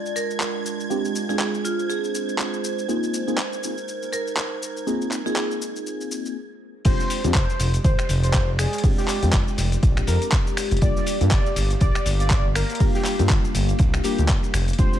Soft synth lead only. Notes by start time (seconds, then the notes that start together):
6.85 C5
7.35 C5
7.84 C5
8.24 C5
8.59 G#4
8.98 G4
10.08 A#4
10.82 D5
11.32 D5
11.81 D5
12.20 D5
12.56 A#4
12.95 G4
14.04 G4
14.79 C5